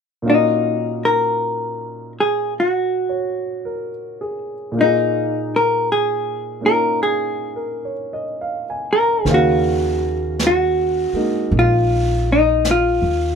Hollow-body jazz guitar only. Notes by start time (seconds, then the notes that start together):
0.30 D#4
1.05 A#4
2.20 G#4
2.60 F#4
4.81 D#4
5.56 A#4
5.92 G#4
6.66 A#4
7.03 G#4
8.93 A#4
9.34 F#4
10.47 F#4
11.59 F4
12.32 D#4
12.71 F4